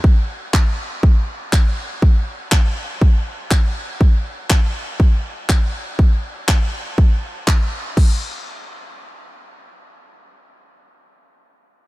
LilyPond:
\new DrumStaff \with { instrumentName = "Drums" } \drummode { \time 4/4 \tempo 4 = 121 bd4 <hc bd>4 bd4 <hc bd>4 | bd4 <hc bd>4 bd4 <hc bd>4 | bd4 <hc bd>4 bd4 <hc bd>4 | bd4 <hc bd>4 bd4 <hc bd>4 |
<cymc bd>4 r4 r4 r4 | r4 r4 r4 r4 | }